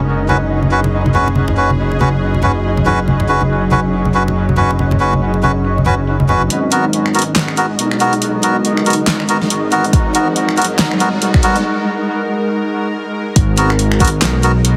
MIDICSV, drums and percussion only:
0, 0, Header, 1, 2, 480
1, 0, Start_track
1, 0, Key_signature, 5, "minor"
1, 0, Tempo, 428571
1, 1523, Time_signature, 4, 2, 24, 8
1, 16539, End_track
2, 0, Start_track
2, 0, Title_t, "Drums"
2, 81, Note_on_c, 9, 42, 50
2, 193, Note_off_c, 9, 42, 0
2, 328, Note_on_c, 9, 63, 82
2, 440, Note_off_c, 9, 63, 0
2, 563, Note_on_c, 9, 42, 73
2, 675, Note_off_c, 9, 42, 0
2, 701, Note_on_c, 9, 63, 59
2, 813, Note_off_c, 9, 63, 0
2, 943, Note_on_c, 9, 62, 62
2, 1043, Note_on_c, 9, 42, 71
2, 1055, Note_off_c, 9, 62, 0
2, 1155, Note_off_c, 9, 42, 0
2, 1184, Note_on_c, 9, 63, 78
2, 1285, Note_on_c, 9, 64, 84
2, 1296, Note_off_c, 9, 63, 0
2, 1397, Note_off_c, 9, 64, 0
2, 1431, Note_on_c, 9, 62, 49
2, 1517, Note_on_c, 9, 63, 91
2, 1524, Note_on_c, 9, 42, 72
2, 1543, Note_off_c, 9, 62, 0
2, 1629, Note_off_c, 9, 63, 0
2, 1636, Note_off_c, 9, 42, 0
2, 1655, Note_on_c, 9, 62, 67
2, 1657, Note_on_c, 9, 64, 72
2, 1767, Note_off_c, 9, 62, 0
2, 1769, Note_off_c, 9, 64, 0
2, 1905, Note_on_c, 9, 63, 63
2, 2003, Note_on_c, 9, 42, 51
2, 2017, Note_off_c, 9, 63, 0
2, 2115, Note_off_c, 9, 42, 0
2, 2145, Note_on_c, 9, 62, 38
2, 2243, Note_on_c, 9, 42, 48
2, 2248, Note_on_c, 9, 63, 90
2, 2257, Note_off_c, 9, 62, 0
2, 2290, Note_off_c, 9, 42, 0
2, 2290, Note_on_c, 9, 42, 60
2, 2323, Note_off_c, 9, 42, 0
2, 2323, Note_on_c, 9, 42, 76
2, 2360, Note_off_c, 9, 63, 0
2, 2435, Note_off_c, 9, 42, 0
2, 2483, Note_on_c, 9, 42, 76
2, 2595, Note_off_c, 9, 42, 0
2, 2626, Note_on_c, 9, 63, 57
2, 2717, Note_on_c, 9, 64, 76
2, 2738, Note_off_c, 9, 63, 0
2, 2829, Note_off_c, 9, 64, 0
2, 2964, Note_on_c, 9, 42, 75
2, 3076, Note_off_c, 9, 42, 0
2, 3107, Note_on_c, 9, 63, 82
2, 3204, Note_on_c, 9, 64, 78
2, 3219, Note_off_c, 9, 63, 0
2, 3316, Note_off_c, 9, 64, 0
2, 3445, Note_on_c, 9, 42, 74
2, 3447, Note_on_c, 9, 63, 80
2, 3557, Note_off_c, 9, 42, 0
2, 3559, Note_off_c, 9, 63, 0
2, 3581, Note_on_c, 9, 62, 60
2, 3586, Note_on_c, 9, 64, 73
2, 3683, Note_on_c, 9, 42, 77
2, 3693, Note_off_c, 9, 62, 0
2, 3698, Note_off_c, 9, 64, 0
2, 3795, Note_off_c, 9, 42, 0
2, 3816, Note_on_c, 9, 63, 65
2, 3923, Note_on_c, 9, 42, 53
2, 3928, Note_off_c, 9, 63, 0
2, 4035, Note_off_c, 9, 42, 0
2, 4159, Note_on_c, 9, 63, 86
2, 4163, Note_on_c, 9, 42, 47
2, 4210, Note_off_c, 9, 42, 0
2, 4210, Note_on_c, 9, 42, 64
2, 4244, Note_off_c, 9, 42, 0
2, 4244, Note_on_c, 9, 42, 76
2, 4271, Note_off_c, 9, 63, 0
2, 4356, Note_off_c, 9, 42, 0
2, 4404, Note_on_c, 9, 42, 79
2, 4516, Note_off_c, 9, 42, 0
2, 4540, Note_on_c, 9, 63, 64
2, 4652, Note_off_c, 9, 63, 0
2, 4795, Note_on_c, 9, 62, 63
2, 4883, Note_on_c, 9, 42, 79
2, 4907, Note_off_c, 9, 62, 0
2, 4995, Note_off_c, 9, 42, 0
2, 5028, Note_on_c, 9, 63, 85
2, 5113, Note_on_c, 9, 64, 92
2, 5124, Note_on_c, 9, 42, 52
2, 5140, Note_off_c, 9, 63, 0
2, 5225, Note_off_c, 9, 64, 0
2, 5236, Note_off_c, 9, 42, 0
2, 5272, Note_on_c, 9, 62, 51
2, 5362, Note_on_c, 9, 42, 80
2, 5366, Note_on_c, 9, 63, 92
2, 5384, Note_off_c, 9, 62, 0
2, 5474, Note_off_c, 9, 42, 0
2, 5478, Note_off_c, 9, 63, 0
2, 5499, Note_on_c, 9, 62, 67
2, 5511, Note_on_c, 9, 64, 83
2, 5602, Note_on_c, 9, 42, 80
2, 5611, Note_off_c, 9, 62, 0
2, 5623, Note_off_c, 9, 64, 0
2, 5714, Note_off_c, 9, 42, 0
2, 5747, Note_on_c, 9, 63, 56
2, 5844, Note_on_c, 9, 42, 54
2, 5859, Note_off_c, 9, 63, 0
2, 5956, Note_off_c, 9, 42, 0
2, 5978, Note_on_c, 9, 62, 38
2, 6082, Note_on_c, 9, 42, 50
2, 6089, Note_on_c, 9, 63, 77
2, 6090, Note_off_c, 9, 62, 0
2, 6130, Note_off_c, 9, 42, 0
2, 6130, Note_on_c, 9, 42, 66
2, 6163, Note_off_c, 9, 42, 0
2, 6163, Note_on_c, 9, 42, 79
2, 6201, Note_off_c, 9, 63, 0
2, 6275, Note_off_c, 9, 42, 0
2, 6323, Note_on_c, 9, 42, 80
2, 6435, Note_off_c, 9, 42, 0
2, 6475, Note_on_c, 9, 63, 64
2, 6563, Note_on_c, 9, 42, 53
2, 6563, Note_on_c, 9, 64, 79
2, 6587, Note_off_c, 9, 63, 0
2, 6675, Note_off_c, 9, 42, 0
2, 6675, Note_off_c, 9, 64, 0
2, 6802, Note_on_c, 9, 42, 82
2, 6914, Note_off_c, 9, 42, 0
2, 6943, Note_on_c, 9, 63, 82
2, 7042, Note_on_c, 9, 42, 54
2, 7044, Note_on_c, 9, 64, 86
2, 7055, Note_off_c, 9, 63, 0
2, 7154, Note_off_c, 9, 42, 0
2, 7156, Note_off_c, 9, 64, 0
2, 7185, Note_on_c, 9, 42, 36
2, 7283, Note_off_c, 9, 42, 0
2, 7283, Note_on_c, 9, 42, 81
2, 7395, Note_off_c, 9, 42, 0
2, 7522, Note_on_c, 9, 42, 79
2, 7634, Note_off_c, 9, 42, 0
2, 7764, Note_on_c, 9, 42, 55
2, 7876, Note_off_c, 9, 42, 0
2, 7904, Note_on_c, 9, 26, 49
2, 8003, Note_on_c, 9, 42, 49
2, 8016, Note_off_c, 9, 26, 0
2, 8049, Note_off_c, 9, 42, 0
2, 8049, Note_on_c, 9, 42, 66
2, 8083, Note_off_c, 9, 42, 0
2, 8083, Note_on_c, 9, 42, 81
2, 8195, Note_off_c, 9, 42, 0
2, 8241, Note_on_c, 9, 38, 115
2, 8241, Note_on_c, 9, 39, 90
2, 8241, Note_on_c, 9, 42, 84
2, 8353, Note_off_c, 9, 38, 0
2, 8353, Note_off_c, 9, 39, 0
2, 8353, Note_off_c, 9, 42, 0
2, 8382, Note_on_c, 9, 26, 48
2, 8482, Note_on_c, 9, 42, 54
2, 8494, Note_off_c, 9, 26, 0
2, 8594, Note_off_c, 9, 42, 0
2, 8723, Note_on_c, 9, 42, 82
2, 8835, Note_off_c, 9, 42, 0
2, 8864, Note_on_c, 9, 26, 50
2, 8962, Note_on_c, 9, 42, 54
2, 8976, Note_off_c, 9, 26, 0
2, 9074, Note_off_c, 9, 42, 0
2, 9104, Note_on_c, 9, 42, 37
2, 9203, Note_off_c, 9, 42, 0
2, 9203, Note_on_c, 9, 42, 77
2, 9315, Note_off_c, 9, 42, 0
2, 9442, Note_on_c, 9, 42, 78
2, 9554, Note_off_c, 9, 42, 0
2, 9685, Note_on_c, 9, 42, 52
2, 9797, Note_off_c, 9, 42, 0
2, 9827, Note_on_c, 9, 26, 48
2, 9925, Note_on_c, 9, 42, 49
2, 9939, Note_off_c, 9, 26, 0
2, 9971, Note_off_c, 9, 42, 0
2, 9971, Note_on_c, 9, 42, 65
2, 10004, Note_off_c, 9, 42, 0
2, 10004, Note_on_c, 9, 42, 78
2, 10116, Note_off_c, 9, 42, 0
2, 10162, Note_on_c, 9, 38, 126
2, 10162, Note_on_c, 9, 39, 92
2, 10162, Note_on_c, 9, 42, 77
2, 10274, Note_off_c, 9, 38, 0
2, 10274, Note_off_c, 9, 39, 0
2, 10274, Note_off_c, 9, 42, 0
2, 10304, Note_on_c, 9, 26, 50
2, 10401, Note_on_c, 9, 42, 54
2, 10416, Note_off_c, 9, 26, 0
2, 10513, Note_off_c, 9, 42, 0
2, 10545, Note_on_c, 9, 38, 36
2, 10644, Note_on_c, 9, 42, 80
2, 10657, Note_off_c, 9, 38, 0
2, 10756, Note_off_c, 9, 42, 0
2, 10884, Note_on_c, 9, 42, 53
2, 10996, Note_off_c, 9, 42, 0
2, 11026, Note_on_c, 9, 42, 36
2, 11123, Note_on_c, 9, 36, 125
2, 11124, Note_off_c, 9, 42, 0
2, 11124, Note_on_c, 9, 42, 76
2, 11235, Note_off_c, 9, 36, 0
2, 11236, Note_off_c, 9, 42, 0
2, 11364, Note_on_c, 9, 42, 77
2, 11476, Note_off_c, 9, 42, 0
2, 11602, Note_on_c, 9, 42, 52
2, 11714, Note_off_c, 9, 42, 0
2, 11745, Note_on_c, 9, 26, 51
2, 11843, Note_on_c, 9, 42, 49
2, 11857, Note_off_c, 9, 26, 0
2, 11890, Note_off_c, 9, 42, 0
2, 11890, Note_on_c, 9, 42, 63
2, 11922, Note_off_c, 9, 42, 0
2, 11922, Note_on_c, 9, 42, 78
2, 12034, Note_off_c, 9, 42, 0
2, 12083, Note_on_c, 9, 38, 127
2, 12083, Note_on_c, 9, 39, 91
2, 12083, Note_on_c, 9, 42, 79
2, 12195, Note_off_c, 9, 38, 0
2, 12195, Note_off_c, 9, 39, 0
2, 12195, Note_off_c, 9, 42, 0
2, 12224, Note_on_c, 9, 26, 52
2, 12324, Note_on_c, 9, 42, 52
2, 12336, Note_off_c, 9, 26, 0
2, 12436, Note_off_c, 9, 42, 0
2, 12563, Note_on_c, 9, 42, 78
2, 12675, Note_off_c, 9, 42, 0
2, 12702, Note_on_c, 9, 26, 53
2, 12703, Note_on_c, 9, 36, 116
2, 12801, Note_on_c, 9, 42, 52
2, 12814, Note_off_c, 9, 26, 0
2, 12815, Note_off_c, 9, 36, 0
2, 12913, Note_off_c, 9, 42, 0
2, 12943, Note_on_c, 9, 42, 35
2, 13055, Note_off_c, 9, 42, 0
2, 14963, Note_on_c, 9, 42, 81
2, 14964, Note_on_c, 9, 36, 125
2, 15075, Note_off_c, 9, 42, 0
2, 15076, Note_off_c, 9, 36, 0
2, 15204, Note_on_c, 9, 42, 83
2, 15316, Note_off_c, 9, 42, 0
2, 15346, Note_on_c, 9, 26, 59
2, 15445, Note_on_c, 9, 42, 57
2, 15458, Note_off_c, 9, 26, 0
2, 15557, Note_off_c, 9, 42, 0
2, 15585, Note_on_c, 9, 26, 75
2, 15684, Note_on_c, 9, 36, 106
2, 15684, Note_on_c, 9, 42, 53
2, 15697, Note_off_c, 9, 26, 0
2, 15731, Note_off_c, 9, 42, 0
2, 15731, Note_on_c, 9, 42, 66
2, 15764, Note_off_c, 9, 42, 0
2, 15764, Note_on_c, 9, 42, 85
2, 15796, Note_off_c, 9, 36, 0
2, 15876, Note_off_c, 9, 42, 0
2, 15925, Note_on_c, 9, 38, 122
2, 15925, Note_on_c, 9, 39, 98
2, 15925, Note_on_c, 9, 42, 85
2, 16037, Note_off_c, 9, 38, 0
2, 16037, Note_off_c, 9, 39, 0
2, 16037, Note_off_c, 9, 42, 0
2, 16165, Note_on_c, 9, 42, 55
2, 16277, Note_off_c, 9, 42, 0
2, 16404, Note_on_c, 9, 42, 85
2, 16516, Note_off_c, 9, 42, 0
2, 16539, End_track
0, 0, End_of_file